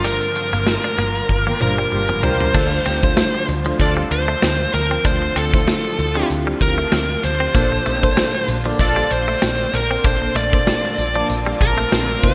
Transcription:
Already playing: picked electric bass G1, fm electric piano G2 G3 D4 F4 A#4, ambient pad D3 F3 G3 A#3 F4
0.04 clean electric guitar G3, lead electric guitar A#4, closed hi-hat
0.21 closed hi-hat
0.35 muted clean electric guitar stroke, closed hi-hat
0.53 picked electric bass G1, clean electric guitar A#3, closed hi-hat
0.67 muted clean electric guitar stroke, snare
0.84 clean electric guitar D4, closed hi-hat
0.98 picked electric bass G1, clean electric guitar A#3, closed hi-hat
1.15 closed hi-hat
1.29 picked electric bass G1, kick, high tom
1.46 clean electric guitar A#3, analog polysynth F4 G4 A#4, high tom
1.60 picked electric bass G1, fm electric piano G3 D4 F4 C5, lead electric guitar A#4, muted clean electric guitar stroke, mid tom
1.78 clean electric guitar G3
1.92 picked electric bass G1, analog polysynth F4 G4 A#4, muted clean electric guitar stroke
2.09 clean electric guitar F3, mid tom
2.22 picked electric bass C2, fm electric piano G3 D4 F4 A#4, clean electric guitar G3, analog polysynth F4 G4 A#4, lead electric guitar C5, floor tom
2.40 floor tom
2.54 picked electric bass D2, fm electric piano D3 A3 D4 F4 C5, ambient pad D3 F3 C4 F4, analog polysynth D4 F4 A4, clean electric guitar D4, kick, crash
2.72 muted clean electric guitar stroke
2.86 picked electric bass D2, clean electric guitar C4, analog polysynth C4 D#4 G4, closed hi-hat
3.02 fm electric piano A3 D4 F4 C5, kick
3.17 clean electric guitar A3, snare, closed hi-hat, tambourine
3.35 muted clean electric guitar stroke
3.48 picked electric bass D2, closed hi-hat
3.65 clean electric guitar F3, fm electric piano A3 D4 F4 C5
3.79 picked electric bass D2, analog polysynth D4 F4 A4, lead electric guitar D5, kick, closed hi-hat
3.97 clean electric guitar G3
4.11 picked electric bass D2, lead electric guitar C5, muted clean electric guitar stroke, closed hi-hat
4.28 clean electric guitar A3
4.42 picked electric bass D2, clean electric guitar C4, snare, closed hi-hat, tambourine
4.74 picked electric bass D2, lead electric guitar A#4, muted clean electric guitar stroke, closed hi-hat
4.91 clean electric guitar C4
5.04 picked electric bass D2, fm electric piano D3 A3 D4 F4 C5, ambient pad D4, clean electric guitar D4, lead electric guitar C5, kick, closed hi-hat
5.22 muted clean electric guitar stroke
5.36 picked electric bass D2, clean electric guitar C4, lead electric guitar A4, closed hi-hat
5.53 fm electric piano A3 D4 E4 C5, kick
5.60 fm electric piano F4
5.67 clean electric guitar A3, snare, closed hi-hat, tambourine
5.85 muted clean electric guitar stroke
5.99 picked electric bass D2, closed hi-hat
6.15 clean electric guitar F3, fm electric piano C4 D4 E4 G4
6.22 fm electric piano F4
6.30 picked electric bass D2, closed hi-hat
6.47 clean electric guitar G3
6.61 picked electric bass D2, lead electric guitar A#4, muted clean electric guitar stroke, kick, closed hi-hat
6.78 clean electric guitar A3
6.92 picked electric bass D2, clean electric guitar C4, snare, closed hi-hat, tambourine
7.23 picked electric bass D2, lead electric guitar C5, muted clean electric guitar stroke, closed hi-hat
7.40 clean electric guitar C4
7.54 picked electric bass A#1, fm electric piano A#2 A#3 D4 A4 C5, ambient pad A#3 C4, clean electric guitar A#3, analog polysynth D4 F4 A4, kick, closed hi-hat
7.72 muted clean electric guitar stroke
7.86 picked electric bass A#1, clean electric guitar A3, analog polysynth C4 D#4 G4, closed hi-hat
8.02 fm electric piano A#3 D4 A4 C5, kick
8.17 clean electric guitar G3, snare, closed hi-hat, tambourine
8.35 muted clean electric guitar stroke
8.48 picked electric bass A#1, closed hi-hat
8.65 clean electric guitar F3, fm electric piano A#3 D4 A4 D5
8.79 picked electric bass A#1, analog polysynth D4 F4 A4, lead electric guitar D5, kick, closed hi-hat
8.96 clean electric guitar G3
9.11 picked electric bass A#1, lead electric guitar C5, muted clean electric guitar stroke, closed hi-hat
9.28 clean electric guitar A3
9.42 picked electric bass A#1, clean electric guitar C4, snare, closed hi-hat, tambourine
9.74 picked electric bass A#1, lead electric guitar A#4, muted clean electric guitar stroke, closed hi-hat
9.91 clean electric guitar C4
10.04 picked electric bass A#1, fm electric piano A#2 A#3 D4 A4 C5, clean electric guitar A#3, lead electric guitar C5, kick, closed hi-hat
10.22 muted clean electric guitar stroke
10.35 picked electric bass A#1, clean electric guitar A3, lead electric guitar D5, closed hi-hat
10.53 fm electric piano A#3 D4 A4 C5, kick
10.67 clean electric guitar G3, snare, closed hi-hat, tambourine
10.85 muted clean electric guitar stroke
10.98 picked electric bass A#1, closed hi-hat
11.15 clean electric guitar F3, fm electric piano A#3 D4 D5 A5
11.30 picked electric bass A#1, closed hi-hat
11.46 clean electric guitar G3
11.61 picked electric bass A#1, lead electric guitar A#4, muted clean electric guitar stroke, kick, closed hi-hat
11.78 clean electric guitar A3
11.92 picked electric bass A#1, clean electric guitar C4, snare, closed hi-hat, tambourine
12.23 picked electric bass F1, fm electric piano A#3 D#4 F4 C5, lead electric guitar C5, muted clean electric guitar stroke, kick, open hi-hat

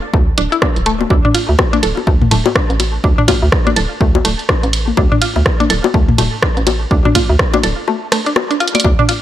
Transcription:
0.14 fm bass D2, synth arpeggio sound A3, kick, high bongo
0.38 fm bass D1, synth arpeggio sound D4, closed hi-hat
0.52 synth arpeggio sound E4, closed hi-hat
0.62 synth arpeggio sound D4, kick, cross-stick, high bongo
0.76 fm bass D1, closed hi-hat
0.86 synth arpeggio sound A3, closed hi-hat
1.01 high tom, high bongo
1.10 fm bass D2, synth arpeggio sound D4, kick, high bongo
1.25 synth arpeggio sound D4, mid tom
1.34 synth arpeggio sound F4, closed hi-hat, ride
1.49 fm bass D2
1.59 kick, cross-stick, high bongo
1.73 synth arpeggio sound D4, closed hi-hat, high tom
1.83 fm bass D1, synth arpeggio sound A4, closed hi-hat, ride
1.97 high bongo
2.07 fm bass D2, synth arpeggio sound A3, kick
2.22 mid tom, high tom
2.31 fm bass D1, synth arpeggio sound A3, closed hi-hat, mid tom, ride
2.46 high bongo
2.55 synth arpeggio sound D4, kick, cross-stick
2.70 fm bass A1, closed hi-hat
2.80 closed hi-hat, ride, high bongo
3.04 fm bass D2, synth arpeggio sound D4, kick
3.18 synth arpeggio sound D4, mid tom
3.28 synth arpeggio sound F4, kick, closed hi-hat, high tom, ride, high bongo
3.42 fm bass D2
3.52 kick, cross-stick
3.67 synth arpeggio sound D4, closed hi-hat, high tom, high bongo
3.76 fm bass D1, synth arpeggio sound A4, closed hi-hat, ride
4.01 fm bass D2, synth arpeggio sound A3, kick
4.15 high bongo
4.25 fm bass D1, synth arpeggio sound A3, closed hi-hat, ride
4.39 closed hi-hat
4.49 synth arpeggio sound D4, kick, cross-stick, high bongo
4.63 fm bass A1, closed hi-hat
4.73 closed hi-hat, ride
4.88 high tom
4.97 fm bass D2, synth arpeggio sound D4, kick, high bongo
5.12 synth arpeggio sound D4, mid tom
5.22 synth arpeggio sound F4, closed hi-hat, ride
5.36 fm bass D2, high bongo
5.46 kick, cross-stick
5.60 synth arpeggio sound D4, closed hi-hat, high tom
5.70 fm bass D1, synth arpeggio sound A4, closed hi-hat, ride
5.84 high bongo
5.94 fm bass D2, synth arpeggio sound A3, kick
6.09 mid tom, high tom
6.18 fm bass D1, synth arpeggio sound A3, closed hi-hat, mid tom, ride, high bongo
6.42 synth arpeggio sound D4, kick, cross-stick
6.57 fm bass A1, closed hi-hat
6.67 closed hi-hat, ride, high bongo
6.91 fm bass D2, synth arpeggio sound D4, kick
7.05 synth arpeggio sound D4, mid tom, high bongo
7.15 synth arpeggio sound F4, kick, closed hi-hat, high tom, ride
7.30 fm bass D2
7.39 kick, cross-stick
7.54 synth arpeggio sound D4, closed hi-hat, high tom, high bongo
7.63 fm bass D1, synth arpeggio sound A4, closed hi-hat, ride
7.88 synth arpeggio sound A3, high bongo
8.12 synth arpeggio sound A3, cross-stick, closed hi-hat, ride
8.26 synth arpeggio sound D4, closed hi-hat
8.36 cross-stick, high bongo
8.51 synth arpeggio sound D4, closed hi-hat
8.60 synth arpeggio sound F4, closed hi-hat
8.68 closed hi-hat
8.75 synth arpeggio sound D5, closed hi-hat, high tom, high bongo
8.80 closed hi-hat
8.85 fm bass D2, synth arpeggio sound D4, kick, high bongo
8.99 synth arpeggio sound D4, mid tom
9.09 synth arpeggio sound F4, closed hi-hat, ride

